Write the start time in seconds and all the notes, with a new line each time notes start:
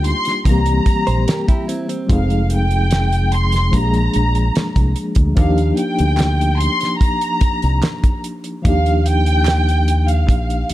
Already playing: D2 G3 A#3 D4 D#4 F4 G4
0.04 C6, closed hi-hat
0.25 snare, closed hi-hat
0.45 C2 E3 G3 A#3 C4 A#5, kick, closed hi-hat
0.51 G4
0.66 closed hi-hat
0.86 kick, closed hi-hat
1.07 A#1 C5, closed hi-hat
1.28 G4 A#4, snare, closed hi-hat
1.48 E4 G4, kick, closed hi-hat
1.68 C4 E4, closed hi-hat
1.89 C4, closed hi-hat
2.07 F1 F3 G#3 C4, kick, closed hi-hat
2.11 D#4 G#4 F5
2.30 closed hi-hat
2.50 closed hi-hat
2.54 G5
2.71 closed hi-hat
2.91 snare, closed hi-hat
3.12 closed hi-hat
3.32 C6, closed hi-hat
3.52 snare, closed hi-hat
3.71 A#1 F3 G#3 A#3 A#5, kick, closed hi-hat
3.76 D4 G4
3.84 G#4
3.94 closed hi-hat
4.14 A#1, closed hi-hat
4.35 closed hi-hat
4.55 muted fingered electric bass stroke, snare, closed hi-hat
4.76 C2, kick, closed hi-hat
4.96 closed hi-hat
5.15 D2, kick, closed hi-hat
5.36 D#2 F3 A#3 D4 F5, kick, closed hi-hat
5.40 D#4 G4
5.58 closed hi-hat
5.77 G5, closed hi-hat
5.99 D2, closed hi-hat
6.17 snare, clap, closed hi-hat
6.41 closed hi-hat
6.58 C6, closed hi-hat
6.81 snare, closed hi-hat
6.99 A#5, kick, closed hi-hat
7.21 closed hi-hat
7.41 muted fingered electric bass stroke, kick, closed hi-hat
7.62 C2, closed hi-hat
7.82 snare, clap, closed hi-hat
8.04 kick, closed hi-hat
8.24 closed hi-hat
8.44 closed hi-hat
8.62 D#2 F3 A#3 D4 F5, kick, closed hi-hat
8.67 D#4 G4
8.86 closed hi-hat
9.06 G5, closed hi-hat
9.26 closed hi-hat
9.45 snare, clap, closed hi-hat
9.69 closed hi-hat
9.88 closed hi-hat
10.08 F5, closed hi-hat
10.29 A#1, kick, closed hi-hat
10.50 closed hi-hat
10.69 muted fingered electric bass stroke, closed hi-hat